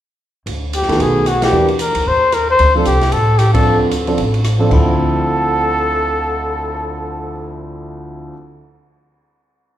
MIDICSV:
0, 0, Header, 1, 6, 480
1, 0, Start_track
1, 0, Key_signature, -1, "minor"
1, 0, Tempo, 264201
1, 852, Time_signature, 4, 2, 24, 8
1, 17766, End_track
2, 0, Start_track
2, 0, Title_t, "Trumpet"
2, 0, Program_c, 0, 56
2, 1371, Note_on_c, 0, 67, 61
2, 1842, Note_on_c, 0, 68, 67
2, 1869, Note_off_c, 0, 67, 0
2, 2324, Note_on_c, 0, 66, 65
2, 2351, Note_off_c, 0, 68, 0
2, 2600, Note_off_c, 0, 66, 0
2, 2615, Note_on_c, 0, 67, 72
2, 3050, Note_off_c, 0, 67, 0
2, 3285, Note_on_c, 0, 70, 67
2, 3771, Note_on_c, 0, 72, 76
2, 3798, Note_off_c, 0, 70, 0
2, 4248, Note_on_c, 0, 70, 68
2, 4275, Note_off_c, 0, 72, 0
2, 4527, Note_off_c, 0, 70, 0
2, 4542, Note_on_c, 0, 72, 90
2, 4979, Note_off_c, 0, 72, 0
2, 5203, Note_on_c, 0, 67, 66
2, 5673, Note_on_c, 0, 69, 69
2, 5700, Note_off_c, 0, 67, 0
2, 6146, Note_on_c, 0, 67, 62
2, 6173, Note_off_c, 0, 69, 0
2, 6405, Note_off_c, 0, 67, 0
2, 6416, Note_on_c, 0, 69, 67
2, 6878, Note_off_c, 0, 69, 0
2, 8556, Note_on_c, 0, 69, 76
2, 13772, Note_off_c, 0, 69, 0
2, 17766, End_track
3, 0, Start_track
3, 0, Title_t, "Grand piano"
3, 0, Program_c, 1, 0
3, 1603, Note_on_c, 1, 51, 51
3, 1610, Note_on_c, 1, 57, 51
3, 1613, Note_on_c, 1, 59, 46
3, 1625, Note_on_c, 1, 66, 57
3, 2248, Note_off_c, 1, 51, 0
3, 2251, Note_off_c, 1, 57, 0
3, 2252, Note_off_c, 1, 59, 0
3, 2258, Note_off_c, 1, 66, 0
3, 2748, Note_on_c, 1, 52, 52
3, 2764, Note_on_c, 1, 58, 46
3, 2769, Note_on_c, 1, 62, 50
3, 2779, Note_on_c, 1, 67, 59
3, 3024, Note_off_c, 1, 52, 0
3, 3032, Note_off_c, 1, 58, 0
3, 3035, Note_off_c, 1, 62, 0
3, 3040, Note_off_c, 1, 67, 0
3, 4995, Note_on_c, 1, 53, 61
3, 5009, Note_on_c, 1, 60, 56
3, 5016, Note_on_c, 1, 62, 52
3, 5025, Note_on_c, 1, 69, 68
3, 5170, Note_off_c, 1, 53, 0
3, 5176, Note_off_c, 1, 60, 0
3, 5180, Note_off_c, 1, 62, 0
3, 5184, Note_off_c, 1, 69, 0
3, 6423, Note_on_c, 1, 53, 54
3, 6430, Note_on_c, 1, 60, 48
3, 6444, Note_on_c, 1, 62, 51
3, 6447, Note_on_c, 1, 69, 61
3, 7069, Note_off_c, 1, 53, 0
3, 7073, Note_off_c, 1, 60, 0
3, 7080, Note_off_c, 1, 62, 0
3, 7082, Note_off_c, 1, 69, 0
3, 7398, Note_on_c, 1, 53, 52
3, 7407, Note_on_c, 1, 60, 50
3, 7413, Note_on_c, 1, 62, 52
3, 7414, Note_on_c, 1, 69, 60
3, 7576, Note_off_c, 1, 53, 0
3, 7581, Note_off_c, 1, 60, 0
3, 7583, Note_off_c, 1, 62, 0
3, 7584, Note_off_c, 1, 69, 0
3, 8336, Note_on_c, 1, 53, 56
3, 8352, Note_on_c, 1, 60, 53
3, 8361, Note_on_c, 1, 62, 50
3, 8365, Note_on_c, 1, 69, 64
3, 8526, Note_off_c, 1, 53, 0
3, 8534, Note_off_c, 1, 60, 0
3, 8537, Note_on_c, 1, 38, 56
3, 8538, Note_off_c, 1, 62, 0
3, 8540, Note_off_c, 1, 69, 0
3, 8540, Note_on_c, 1, 50, 51
3, 8561, Note_on_c, 1, 53, 54
3, 8572, Note_on_c, 1, 60, 52
3, 8587, Note_on_c, 1, 64, 62
3, 15107, Note_off_c, 1, 38, 0
3, 15109, Note_off_c, 1, 50, 0
3, 15119, Note_off_c, 1, 53, 0
3, 15125, Note_off_c, 1, 60, 0
3, 15132, Note_off_c, 1, 64, 0
3, 17766, End_track
4, 0, Start_track
4, 0, Title_t, "Upright bass"
4, 0, Program_c, 2, 32
4, 837, Note_on_c, 2, 38, 68
4, 1560, Note_off_c, 2, 38, 0
4, 1613, Note_on_c, 2, 42, 57
4, 1790, Note_off_c, 2, 42, 0
4, 1801, Note_on_c, 2, 35, 75
4, 2723, Note_off_c, 2, 35, 0
4, 2760, Note_on_c, 2, 40, 65
4, 3487, Note_off_c, 2, 40, 0
4, 3543, Note_on_c, 2, 38, 59
4, 3725, Note_off_c, 2, 38, 0
4, 3748, Note_on_c, 2, 39, 72
4, 4662, Note_off_c, 2, 39, 0
4, 4713, Note_on_c, 2, 38, 72
4, 5159, Note_off_c, 2, 38, 0
4, 5188, Note_on_c, 2, 36, 65
4, 5638, Note_off_c, 2, 36, 0
4, 5669, Note_on_c, 2, 45, 72
4, 6587, Note_off_c, 2, 45, 0
4, 6634, Note_on_c, 2, 38, 66
4, 7551, Note_off_c, 2, 38, 0
4, 7587, Note_on_c, 2, 33, 77
4, 8507, Note_off_c, 2, 33, 0
4, 8559, Note_on_c, 2, 38, 76
4, 15045, Note_off_c, 2, 38, 0
4, 17766, End_track
5, 0, Start_track
5, 0, Title_t, "Cymbal swell"
5, 8850, Note_on_c, 9, 59, 37
5, 12280, Note_off_c, 9, 59, 0
5, 17766, End_track
6, 0, Start_track
6, 0, Title_t, "Drums"
6, 847, Note_on_c, 9, 51, 49
6, 1029, Note_off_c, 9, 51, 0
6, 1330, Note_on_c, 9, 44, 47
6, 1330, Note_on_c, 9, 51, 56
6, 1495, Note_on_c, 9, 38, 24
6, 1512, Note_off_c, 9, 44, 0
6, 1512, Note_off_c, 9, 51, 0
6, 1619, Note_on_c, 9, 51, 37
6, 1660, Note_off_c, 9, 38, 0
6, 1660, Note_on_c, 9, 38, 36
6, 1800, Note_off_c, 9, 51, 0
6, 1816, Note_on_c, 9, 51, 50
6, 1842, Note_off_c, 9, 38, 0
6, 1998, Note_off_c, 9, 51, 0
6, 2289, Note_on_c, 9, 44, 46
6, 2289, Note_on_c, 9, 51, 51
6, 2295, Note_on_c, 9, 37, 52
6, 2471, Note_off_c, 9, 44, 0
6, 2471, Note_off_c, 9, 51, 0
6, 2476, Note_off_c, 9, 37, 0
6, 2578, Note_on_c, 9, 51, 57
6, 2584, Note_on_c, 9, 38, 68
6, 2760, Note_off_c, 9, 51, 0
6, 2766, Note_off_c, 9, 38, 0
6, 3060, Note_on_c, 9, 51, 38
6, 3242, Note_off_c, 9, 51, 0
6, 3250, Note_on_c, 9, 44, 46
6, 3250, Note_on_c, 9, 51, 57
6, 3432, Note_off_c, 9, 44, 0
6, 3432, Note_off_c, 9, 51, 0
6, 3537, Note_on_c, 9, 51, 58
6, 3719, Note_off_c, 9, 51, 0
6, 4219, Note_on_c, 9, 44, 54
6, 4219, Note_on_c, 9, 51, 48
6, 4225, Note_on_c, 9, 37, 51
6, 4401, Note_off_c, 9, 44, 0
6, 4401, Note_off_c, 9, 51, 0
6, 4406, Note_off_c, 9, 37, 0
6, 4701, Note_on_c, 9, 51, 49
6, 4883, Note_off_c, 9, 51, 0
6, 5183, Note_on_c, 9, 44, 47
6, 5183, Note_on_c, 9, 51, 54
6, 5365, Note_off_c, 9, 44, 0
6, 5365, Note_off_c, 9, 51, 0
6, 5473, Note_on_c, 9, 51, 37
6, 5479, Note_on_c, 9, 38, 35
6, 5655, Note_off_c, 9, 51, 0
6, 5660, Note_off_c, 9, 38, 0
6, 5666, Note_on_c, 9, 51, 53
6, 5848, Note_off_c, 9, 51, 0
6, 6151, Note_on_c, 9, 44, 47
6, 6151, Note_on_c, 9, 51, 51
6, 6157, Note_on_c, 9, 37, 51
6, 6333, Note_off_c, 9, 44, 0
6, 6333, Note_off_c, 9, 51, 0
6, 6339, Note_off_c, 9, 37, 0
6, 6439, Note_on_c, 9, 51, 67
6, 6442, Note_on_c, 9, 36, 71
6, 6620, Note_off_c, 9, 51, 0
6, 6624, Note_off_c, 9, 36, 0
6, 7110, Note_on_c, 9, 44, 48
6, 7110, Note_on_c, 9, 51, 56
6, 7291, Note_off_c, 9, 44, 0
6, 7291, Note_off_c, 9, 51, 0
6, 7396, Note_on_c, 9, 51, 38
6, 7578, Note_off_c, 9, 51, 0
6, 7590, Note_on_c, 9, 51, 51
6, 7772, Note_off_c, 9, 51, 0
6, 7882, Note_on_c, 9, 51, 40
6, 8064, Note_off_c, 9, 51, 0
6, 8073, Note_on_c, 9, 44, 48
6, 8073, Note_on_c, 9, 51, 56
6, 8078, Note_on_c, 9, 37, 52
6, 8254, Note_off_c, 9, 44, 0
6, 8254, Note_off_c, 9, 51, 0
6, 8260, Note_off_c, 9, 37, 0
6, 8556, Note_on_c, 9, 36, 46
6, 8558, Note_on_c, 9, 49, 50
6, 8738, Note_off_c, 9, 36, 0
6, 8740, Note_off_c, 9, 49, 0
6, 17766, End_track
0, 0, End_of_file